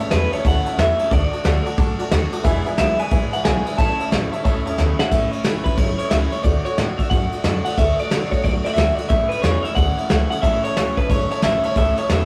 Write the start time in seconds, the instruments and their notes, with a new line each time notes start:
0.00 steel-string acoustic guitar A3 C#4 E4
0.11 upright bass E2, steel-string acoustic guitar A2 E3 A3 C#4 E4, clean electric guitar B4, honky-tonk piano C#5 E5 A5, snare, ride
0.32 steel-string acoustic guitar A3 C#4 E4, honky-tonk piano C#5 E5 A5, clean electric guitar C#5, muted upright bass stroke, ride
0.45 upright bass D2, steel-string acoustic guitar E3 A3 C#4 E4, honky-tonk piano C#5 E5 A5, clean electric guitar F#5, kick, ride
0.65 steel-string acoustic guitar C#4 E4, honky-tonk piano C#5 E5 A5, muted upright bass stroke, ride
0.69 steel-string acoustic guitar A3
0.77 upright bass E2, steel-string acoustic guitar A2 E3 A3 C#4 E4, honky-tonk piano C#5 E5 A5, clean electric guitar E5, snare, ride
0.98 steel-string acoustic guitar C#4 E4, honky-tonk piano C#5 E5 A5, muted upright bass stroke, ride
1.03 steel-string acoustic guitar A3
1.10 upright bass D2, steel-string acoustic guitar D3 A3 D4 F#4, honky-tonk piano D5 F#5 A5, clean electric guitar D5, kick, ride
1.31 steel-string acoustic guitar D4 F#4, honky-tonk piano D5 F#5 A5, muted upright bass stroke, ride
1.36 steel-string acoustic guitar A3
1.44 upright bass D2, steel-string acoustic guitar D3 A3 D4 F#4, honky-tonk piano D5 F#5 A5, snare, ride
1.66 steel-string acoustic guitar A3 D4 F#4, honky-tonk piano D5 F#5 A5, muted upright bass stroke, ride
1.77 upright bass F#2, steel-string acoustic guitar D3 A3 D4, honky-tonk piano D5 F#5 A5, kick, ride
1.81 steel-string acoustic guitar F#4
1.99 steel-string acoustic guitar A3 D4 F#4, honky-tonk piano D5 F#5 A5, ride
2.11 upright bass D#2, steel-string acoustic guitar D3 A3 D4 F#4, honky-tonk piano D5 F#5 A5, snare, ride
2.33 steel-string acoustic guitar A3 D4 F#4, honky-tonk piano D5 F#5 A5, muted upright bass stroke, ride
2.44 upright bass E1, steel-string acoustic guitar E2 B2 E3 G#3 D4 E4, honky-tonk piano B4 E5 G#5, kick, ride
2.66 steel-string acoustic guitar E3 G#3 D4 E4, honky-tonk piano B4 E5 G#5, muted upright bass stroke, ride
2.78 upright bass B1, steel-string acoustic guitar E2 B2 E3 G#3 D4 E4, honky-tonk piano B4 E5 G#5, clean electric guitar E5, snare, ride
2.98 steel-string acoustic guitar E3 G#3 D4 E4, honky-tonk piano B4 E5 G#5, clean electric guitar G#5, muted upright bass stroke, ride
3.11 upright bass A1, steel-string acoustic guitar E3 G#3 D4 E4, honky-tonk piano B4 E5 G#5, kick, ride
3.33 steel-string acoustic guitar E3 G#3 D4 E4, honky-tonk piano B4 E5 G#5, clean electric guitar F#5, muted upright bass stroke, ride
3.45 upright bass B1, steel-string acoustic guitar E2 B2 E3 G#3 D4 E4, honky-tonk piano B4 E5 F#5, clean electric guitar G#5, snare, ride
3.66 steel-string acoustic guitar E3 G#3 D4 E4, honky-tonk piano B4 E5 G#5, muted upright bass stroke, ride
3.78 upright bass A1, steel-string acoustic guitar A2 E3 A3 C#4 E4, honky-tonk piano C#5 E5 A5, clean electric guitar A5, kick, ride
3.99 steel-string acoustic guitar A3 C#4 E4, honky-tonk piano C#5 E5 A5, muted upright bass stroke, ride
4.11 upright bass A1, steel-string acoustic guitar A2 E3 A3 C#4 E4, honky-tonk piano C#5 E5 A5, snare, ride
4.32 steel-string acoustic guitar A3 C#4 E4, honky-tonk piano C#5 E5 A5, muted upright bass stroke, ride
4.44 upright bass C#2, steel-string acoustic guitar E3 A3 C#4, honky-tonk piano C#5 E5 A5, kick, ride
4.48 steel-string acoustic guitar E4
4.66 upright bass E2, steel-string acoustic guitar A3 C#4 E4, honky-tonk piano C#5 E5 A5, ride
4.78 upright bass D2, steel-string acoustic guitar A2 E3 A3 C#4 E4, honky-tonk piano C#5 E5 A5, snare
4.98 steel-string acoustic guitar C#4 E4, honky-tonk piano C#5 E5 A5, clean electric guitar F#5, muted upright bass stroke, snare
5.03 steel-string acoustic guitar A3
5.10 upright bass A1, steel-string acoustic guitar A2 E3 A3 C#4 E4, clean electric guitar E5, kick, crash
5.31 steel-string acoustic guitar A3 C#4 E4, clean electric guitar C#5, ride
5.44 upright bass D2, steel-string acoustic guitar A2 E3 A3 C#4 E4, snare, ride
5.64 upright bass C#2, steel-string acoustic guitar C#4 E4, clean electric guitar B4, kick, ride
5.68 steel-string acoustic guitar A3
5.77 upright bass F#1, steel-string acoustic guitar E3 A3 C#4 E4, clean electric guitar C#5, kick, ride
5.99 steel-string acoustic guitar A3 C#4 E4, clean electric guitar C#5, muted upright bass stroke, ride
6.10 upright bass C#2, steel-string acoustic guitar A2 E3 A3 C#4 E4, clean electric guitar E5, snare, ride
6.31 steel-string acoustic guitar A3 C#4 E4, clean electric guitar C#5, muted upright bass stroke, ride
6.43 upright bass D2, steel-string acoustic guitar D3 A3 D4 F#4, clean electric guitar D5, kick, ride
6.65 steel-string acoustic guitar A3 D4 F#4, clean electric guitar C#5, muted upright bass stroke, ride
6.78 upright bass A2, steel-string acoustic guitar D3 A3 D4 F#4, clean electric guitar D5, snare, ride
6.98 steel-string acoustic guitar A3 D4 F#4, clean electric guitar E5, muted upright bass stroke, kick, ride
7.10 upright bass F#2, steel-string acoustic guitar D3 A3 D4, clean electric guitar F#5, kick, ride
7.14 steel-string acoustic guitar F#4
7.32 steel-string acoustic guitar A3 D4 F#4, ride
7.44 upright bass F#2, steel-string acoustic guitar D3 A3 D4 F#4, snare, ride
7.65 steel-string acoustic guitar D4 F#4, clean electric guitar F#5, ride
7.69 steel-string acoustic guitar A3
7.78 upright bass D2, steel-string acoustic guitar D3 A3 D4 F#4, clean electric guitar E5, kick, ride
7.99 steel-string acoustic guitar D4 F#4, clean electric guitar D5, muted upright bass stroke, ride
8.03 steel-string acoustic guitar A3
8.11 upright bass F#2, steel-string acoustic guitar D3 A3 D4 F#4, snare, ride
8.31 upright bass F#2, steel-string acoustic guitar A3 D4 F#4, clean electric guitar C#5, kick, ride
8.42 upright bass B1, steel-string acoustic guitar D3 A3 D4 F#4, clean electric guitar D5, kick, ride
8.64 steel-string acoustic guitar A3 D4 F#4, clean electric guitar D5 E5, ride
8.69 clean electric guitar D5
8.74 upright bass D2, steel-string acoustic guitar D3 A3 D4 F#4, clean electric guitar E5
8.78 snare, ride
8.95 steel-string acoustic guitar D4 F#4, clean electric guitar D5, muted upright bass stroke, ride
8.99 steel-string acoustic guitar A3
9.09 upright bass A1, steel-string acoustic guitar A2 E3 A3 C#4 E4, clean electric guitar E5, kick, ride
9.29 steel-string acoustic guitar A3 C#4 E4, clean electric guitar B4, muted upright bass stroke, ride
9.42 upright bass E2, steel-string acoustic guitar A2 E3 A3 C#4 E4, clean electric guitar C#5, snare, ride
9.63 steel-string acoustic guitar C#4 E4, clean electric guitar E5, muted upright bass stroke, ride
9.68 steel-string acoustic guitar A3
9.75 upright bass D2, steel-string acoustic guitar E3 A3 C#4 E4, clean electric guitar F#5, kick, ride
9.97 steel-string acoustic guitar A3 C#4 E4, muted upright bass stroke, ride
10.09 upright bass C#2, steel-string acoustic guitar A2 E3 A3 C#4 E4, snare, ride
10.30 steel-string acoustic guitar A3 C#4 E4, clean electric guitar F#5, ride
10.42 upright bass A1, steel-string acoustic guitar A2 E3 A3 C#4 E4, honky-tonk piano C#5 E5 A5, clean electric guitar E5, kick, ride
10.63 steel-string acoustic guitar A3 C#4 E4, clean electric guitar C#5, honky-tonk piano C#5 E5 A5, ride
10.76 upright bass D2, steel-string acoustic guitar A2 E3 A3 C#4 E4, honky-tonk piano C#5 E5 A5, snare, ride
10.97 upright bass C#2, steel-string acoustic guitar C#4 E4, clean electric guitar B4, honky-tonk piano C#5 E5 A5, kick, ride
11.01 steel-string acoustic guitar A3
11.09 upright bass F#1, steel-string acoustic guitar E3 A3 C#4, honky-tonk piano C#5 E5 A5, clean electric guitar C#5, kick, ride
11.14 steel-string acoustic guitar E4
11.30 steel-string acoustic guitar A3 C#4 E4, honky-tonk piano C#5 E5 A5, clean electric guitar C#5, muted upright bass stroke, ride
11.42 upright bass A1, steel-string acoustic guitar A2 E3 A3 C#4 E4, honky-tonk piano C#5 E5 A5, clean electric guitar E5, snare, ride
11.63 steel-string acoustic guitar A3 C#4 E4, honky-tonk piano C#5 E5 A5, clean electric guitar C#5, ride
11.75 upright bass C#2, steel-string acoustic guitar A2 E3 A3 C#4 E4, honky-tonk piano C#5 E5 A5, clean electric guitar E5, kick, ride
11.96 steel-string acoustic guitar A3 C#4 E4, honky-tonk piano C#5 E5 A5, clean electric guitar C#5, ride
12.09 upright bass E2, steel-string acoustic guitar A2 E3 A3 C#4 E4, honky-tonk piano C#5 E5 A5, clean electric guitar E5, snare, ride